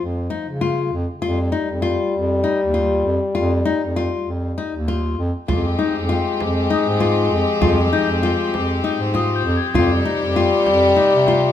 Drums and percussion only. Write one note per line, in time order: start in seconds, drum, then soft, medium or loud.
5.49 frame drum medium
6.40 frame drum soft
6.71 frame drum soft
7.01 frame drum soft
7.62 frame drum medium
8.54 frame drum soft
8.84 frame drum soft
9.14 frame drum soft
9.74 frame drum soft
10.67 frame drum soft
10.96 frame drum soft
11.27 frame drum soft